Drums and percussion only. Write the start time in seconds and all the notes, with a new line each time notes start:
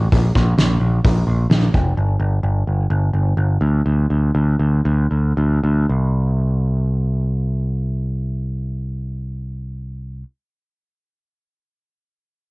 0.12 kick, open hi-hat
0.35 kick, snare
0.58 snare, open hi-hat
1.05 kick, open hi-hat
1.51 snare, open hi-hat
1.74 kick